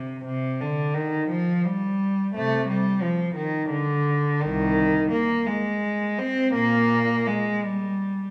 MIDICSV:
0, 0, Header, 1, 2, 480
1, 0, Start_track
1, 0, Tempo, 698487
1, 170, Time_signature, 6, 3, 24, 8
1, 4012, Tempo, 718563
1, 5660, End_track
2, 0, Start_track
2, 0, Title_t, "Cello"
2, 0, Program_c, 0, 42
2, 0, Note_on_c, 0, 48, 75
2, 160, Note_off_c, 0, 48, 0
2, 173, Note_on_c, 0, 48, 86
2, 405, Note_off_c, 0, 48, 0
2, 416, Note_on_c, 0, 50, 81
2, 649, Note_on_c, 0, 51, 83
2, 652, Note_off_c, 0, 50, 0
2, 890, Note_off_c, 0, 51, 0
2, 891, Note_on_c, 0, 53, 80
2, 1127, Note_off_c, 0, 53, 0
2, 1138, Note_on_c, 0, 55, 92
2, 1611, Note_off_c, 0, 55, 0
2, 1615, Note_on_c, 0, 57, 97
2, 1616, Note_on_c, 0, 48, 78
2, 1833, Note_off_c, 0, 48, 0
2, 1844, Note_off_c, 0, 57, 0
2, 1845, Note_on_c, 0, 55, 90
2, 2076, Note_off_c, 0, 55, 0
2, 2077, Note_on_c, 0, 53, 84
2, 2306, Note_on_c, 0, 51, 81
2, 2317, Note_off_c, 0, 53, 0
2, 2541, Note_on_c, 0, 50, 89
2, 2549, Note_off_c, 0, 51, 0
2, 3028, Note_off_c, 0, 50, 0
2, 3040, Note_on_c, 0, 51, 99
2, 3041, Note_on_c, 0, 36, 80
2, 3500, Note_off_c, 0, 36, 0
2, 3513, Note_on_c, 0, 58, 84
2, 3527, Note_off_c, 0, 51, 0
2, 3754, Note_on_c, 0, 56, 80
2, 3757, Note_off_c, 0, 58, 0
2, 4238, Note_off_c, 0, 56, 0
2, 4243, Note_on_c, 0, 60, 94
2, 4481, Note_on_c, 0, 58, 92
2, 4484, Note_off_c, 0, 60, 0
2, 4484, Note_on_c, 0, 46, 81
2, 4938, Note_off_c, 0, 46, 0
2, 4954, Note_off_c, 0, 58, 0
2, 4966, Note_on_c, 0, 56, 85
2, 5208, Note_off_c, 0, 56, 0
2, 5213, Note_on_c, 0, 55, 77
2, 5660, Note_off_c, 0, 55, 0
2, 5660, End_track
0, 0, End_of_file